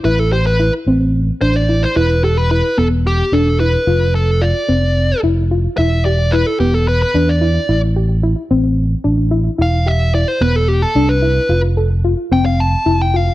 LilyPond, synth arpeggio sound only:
\new Staff \with { instrumentName = "Synth arpeggio sound" } { \time 7/8 \key e \phrygian \tempo 4 = 110 e'8 g'8 e'8 c'4 d'8 e'8 | e'8 g'8 e'8 b4 d'8 e'8 | f'8 a'8 f'8 c'4 e'8 f'8 | e'8 g'8 e'8 b4 d'8 e'8 |
e'8 g'8 e'8 c'4 d'8 e'8 | e'8 g'8 e'8 b4 d'8 e'8 | f'8 a'8 f'8 c'4 e'8 f'8 | }